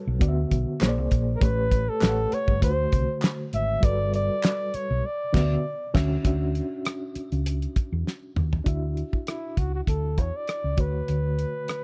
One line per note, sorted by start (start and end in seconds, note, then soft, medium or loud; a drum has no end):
0.00 0.18 G3 medium
0.00 0.18 F#4 medium
0.00 0.19 A4 medium
0.00 0.22 B4 medium
0.00 0.20 C#5 medium
0.07 0.21 B1 medium
0.20 0.44 D2 loud
0.20 0.81 D3 medium
0.20 0.81 B3 medium
0.20 0.82 F#4 medium
0.20 0.28 D5 medium
0.20 kick medium
0.20 closed hi-hat medium
0.28 0.85 E5 medium
0.51 0.64 B1 medium
0.51 kick medium
0.51 closed hi-hat medium
0.80 0.98 A#1 loud
0.80 1.41 A#3 medium
0.80 1.41 G#4 medium
0.80 1.42 C5 medium
0.80 0.89 C#5 medium
0.80 snare loud
0.80 clap medium
0.80 closed hi-hat medium
0.89 1.45 D5 medium
0.98 1.08 C2 medium
1.11 1.34 A#1 medium
1.11 kick medium
1.11 closed hi-hat medium
1.36 1.44 A#4 medium
1.40 1.87 A1 loud
1.40 1.99 A3 medium
1.40 2.00 G4 medium
1.40 2.00 B4 medium
1.40 1.91 B4 loud
1.40 2.01 C#5 medium
1.40 kick loud
1.40 closed hi-hat medium
1.72 kick medium
1.72 closed hi-hat medium
1.89 2.36 A4 loud
2.00 2.25 A1 medium
2.00 2.60 A3 medium
2.00 2.62 G4 medium
2.00 2.62 B4 medium
2.00 2.62 C#5 medium
2.00 2.09 F5 medium
2.00 snare loud
2.00 clap medium
2.00 closed hi-hat medium
2.09 2.66 F#5 medium
2.32 2.63 C#5 loud
2.32 muted fingered electric bass stroke soft
2.32 closed hi-hat medium
2.48 2.59 G1 medium
2.48 kick medium
2.60 2.85 D2 medium
2.60 3.79 D3 medium
2.60 3.80 A3 medium
2.60 2.69 F4 soft
2.60 3.81 C5 medium
2.60 3.19 C5 medium
2.60 kick loud
2.60 closed hi-hat medium
2.69 3.80 F#4 medium
2.92 3.05 C2 medium
2.92 kick medium
2.92 closed hi-hat medium
3.22 snare medium
3.22 clap medium
3.22 closed hi-hat medium
3.53 3.76 G#1 medium
3.53 3.86 E5 loud
3.53 closed hi-hat medium
3.81 4.28 G1 medium
3.81 5.00 G3 medium
3.81 5.01 F#4 medium
3.81 5.01 A4 medium
3.81 5.02 B4 medium
3.81 kick loud
3.81 closed hi-hat medium
3.85 4.14 D5 loud
4.14 4.77 D5 medium
4.14 closed hi-hat medium
4.43 snare loud
4.43 clap medium
4.43 closed hi-hat medium
4.74 5.07 C#5 medium
4.74 muted fingered electric bass stroke soft
4.74 closed hi-hat medium
4.91 5.01 B1 medium
5.06 5.95 D5 medium
5.33 5.55 D2 medium
5.33 5.54 D3 medium
5.33 5.54 B3 medium
5.33 5.55 F#4 medium
5.33 5.55 E5 medium
5.33 kick loud
5.33 snare loud
5.33 crash medium
5.94 6.16 D2 loud
5.94 6.15 D3 medium
5.94 6.15 C#4 loud
5.94 6.16 F#4 medium
5.94 6.16 E5 loud
5.94 kick medium
5.94 snare medium
5.94 crash medium
6.23 6.60 D2 medium
6.23 8.62 C#4 medium
6.23 8.62 D4 medium
6.23 8.63 F#4 medium
6.23 kick loud
6.23 closed hi-hat medium
6.27 8.64 E5 medium
6.55 closed hi-hat medium
6.85 cross-stick loud
6.85 closed hi-hat medium
7.15 muted fingered electric bass stroke soft
7.15 closed hi-hat medium
7.32 7.65 C#2 medium
7.32 closed hi-hat soft
7.46 closed hi-hat medium
7.62 closed hi-hat soft
7.76 muted fingered electric bass stroke soft
7.76 kick medium
7.76 closed hi-hat medium
7.92 8.03 E2 medium
8.07 snare medium
8.36 8.59 D#2 medium
8.36 mid tom medium
8.53 floor tom medium
8.64 9.01 D2 medium
8.64 10.73 D4 medium
8.64 10.74 E4 medium
8.64 10.74 F#4 medium
8.64 10.75 E5 medium
8.64 kick loud
8.64 closed hi-hat medium
8.97 closed hi-hat soft
9.13 kick medium
9.27 9.60 E4 medium
9.27 cross-stick medium
9.27 closed hi-hat medium
9.57 9.80 C#2 medium
9.57 9.74 F#4 medium
9.57 kick medium
9.57 closed hi-hat medium
9.75 9.81 F#4 medium
9.87 10.18 D2 medium
9.87 10.21 A4 medium
9.87 kick medium
9.87 closed hi-hat medium
10.18 10.30 E2 medium
10.18 10.38 C#5 medium
10.18 kick medium
10.18 closed hi-hat medium
10.36 10.82 D5 medium
10.48 cross-stick medium
10.48 closed hi-hat medium
10.64 10.75 C#2 medium
10.76 11.01 D2 medium
10.76 11.84 D3 medium
10.76 11.84 A3 soft
10.76 11.84 F#4 medium
10.76 11.84 C#5 medium
10.76 kick medium
10.76 closed hi-hat medium
10.80 11.84 B4 medium
11.08 11.44 D2 medium
11.08 closed hi-hat medium
11.39 closed hi-hat medium
11.68 cross-stick medium
11.68 closed hi-hat medium